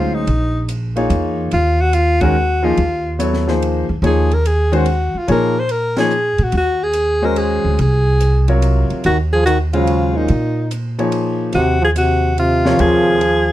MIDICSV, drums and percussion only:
0, 0, Header, 1, 2, 480
1, 0, Start_track
1, 0, Tempo, 417537
1, 312, Time_signature, 3, 2, 24, 8
1, 15546, End_track
2, 0, Start_track
2, 0, Title_t, "Drums"
2, 314, Note_on_c, 9, 51, 51
2, 429, Note_off_c, 9, 51, 0
2, 788, Note_on_c, 9, 44, 56
2, 788, Note_on_c, 9, 51, 62
2, 903, Note_off_c, 9, 44, 0
2, 903, Note_off_c, 9, 51, 0
2, 1108, Note_on_c, 9, 51, 42
2, 1223, Note_off_c, 9, 51, 0
2, 1265, Note_on_c, 9, 44, 50
2, 1265, Note_on_c, 9, 51, 58
2, 1380, Note_off_c, 9, 44, 0
2, 1380, Note_off_c, 9, 51, 0
2, 1740, Note_on_c, 9, 51, 55
2, 1855, Note_off_c, 9, 51, 0
2, 2219, Note_on_c, 9, 44, 54
2, 2219, Note_on_c, 9, 51, 58
2, 2334, Note_off_c, 9, 44, 0
2, 2334, Note_off_c, 9, 51, 0
2, 2541, Note_on_c, 9, 51, 65
2, 2543, Note_on_c, 9, 36, 76
2, 2656, Note_off_c, 9, 51, 0
2, 2658, Note_off_c, 9, 36, 0
2, 3189, Note_on_c, 9, 51, 53
2, 3303, Note_off_c, 9, 51, 0
2, 3675, Note_on_c, 9, 44, 52
2, 3675, Note_on_c, 9, 51, 68
2, 3790, Note_off_c, 9, 44, 0
2, 3790, Note_off_c, 9, 51, 0
2, 3832, Note_on_c, 9, 38, 30
2, 3947, Note_off_c, 9, 38, 0
2, 3997, Note_on_c, 9, 38, 42
2, 4112, Note_off_c, 9, 38, 0
2, 4166, Note_on_c, 9, 51, 54
2, 4281, Note_off_c, 9, 51, 0
2, 4642, Note_on_c, 9, 51, 53
2, 4757, Note_off_c, 9, 51, 0
2, 4959, Note_on_c, 9, 51, 43
2, 5074, Note_off_c, 9, 51, 0
2, 5121, Note_on_c, 9, 44, 53
2, 5121, Note_on_c, 9, 51, 67
2, 5236, Note_off_c, 9, 44, 0
2, 5236, Note_off_c, 9, 51, 0
2, 5435, Note_on_c, 9, 51, 44
2, 5550, Note_off_c, 9, 51, 0
2, 5582, Note_on_c, 9, 51, 53
2, 5697, Note_off_c, 9, 51, 0
2, 6072, Note_on_c, 9, 51, 56
2, 6187, Note_off_c, 9, 51, 0
2, 6540, Note_on_c, 9, 51, 61
2, 6655, Note_off_c, 9, 51, 0
2, 6859, Note_on_c, 9, 51, 60
2, 6860, Note_on_c, 9, 38, 73
2, 6974, Note_off_c, 9, 51, 0
2, 6975, Note_off_c, 9, 38, 0
2, 7017, Note_on_c, 9, 44, 55
2, 7132, Note_off_c, 9, 44, 0
2, 7337, Note_on_c, 9, 51, 39
2, 7452, Note_off_c, 9, 51, 0
2, 7496, Note_on_c, 9, 51, 60
2, 7611, Note_off_c, 9, 51, 0
2, 7970, Note_on_c, 9, 44, 49
2, 7970, Note_on_c, 9, 51, 61
2, 8085, Note_off_c, 9, 44, 0
2, 8085, Note_off_c, 9, 51, 0
2, 8462, Note_on_c, 9, 51, 56
2, 8577, Note_off_c, 9, 51, 0
2, 8951, Note_on_c, 9, 51, 53
2, 9066, Note_off_c, 9, 51, 0
2, 9432, Note_on_c, 9, 44, 64
2, 9432, Note_on_c, 9, 51, 61
2, 9546, Note_off_c, 9, 44, 0
2, 9546, Note_off_c, 9, 51, 0
2, 9747, Note_on_c, 9, 51, 43
2, 9862, Note_off_c, 9, 51, 0
2, 9912, Note_on_c, 9, 44, 52
2, 9912, Note_on_c, 9, 51, 58
2, 10027, Note_off_c, 9, 44, 0
2, 10027, Note_off_c, 9, 51, 0
2, 10233, Note_on_c, 9, 51, 36
2, 10348, Note_off_c, 9, 51, 0
2, 10390, Note_on_c, 9, 51, 56
2, 10505, Note_off_c, 9, 51, 0
2, 10884, Note_on_c, 9, 44, 50
2, 10884, Note_on_c, 9, 51, 69
2, 10999, Note_off_c, 9, 44, 0
2, 10999, Note_off_c, 9, 51, 0
2, 11189, Note_on_c, 9, 51, 45
2, 11304, Note_off_c, 9, 51, 0
2, 11349, Note_on_c, 9, 51, 57
2, 11464, Note_off_c, 9, 51, 0
2, 11821, Note_on_c, 9, 51, 55
2, 11936, Note_off_c, 9, 51, 0
2, 12311, Note_on_c, 9, 44, 55
2, 12311, Note_on_c, 9, 51, 68
2, 12426, Note_off_c, 9, 44, 0
2, 12426, Note_off_c, 9, 51, 0
2, 12632, Note_on_c, 9, 51, 40
2, 12747, Note_off_c, 9, 51, 0
2, 12783, Note_on_c, 9, 51, 57
2, 12897, Note_off_c, 9, 51, 0
2, 13249, Note_on_c, 9, 51, 54
2, 13364, Note_off_c, 9, 51, 0
2, 13746, Note_on_c, 9, 44, 66
2, 13746, Note_on_c, 9, 51, 67
2, 13861, Note_off_c, 9, 44, 0
2, 13861, Note_off_c, 9, 51, 0
2, 14230, Note_on_c, 9, 51, 51
2, 14345, Note_off_c, 9, 51, 0
2, 14545, Note_on_c, 9, 38, 51
2, 14660, Note_off_c, 9, 38, 0
2, 14702, Note_on_c, 9, 51, 56
2, 14816, Note_off_c, 9, 51, 0
2, 15186, Note_on_c, 9, 51, 53
2, 15301, Note_off_c, 9, 51, 0
2, 15546, End_track
0, 0, End_of_file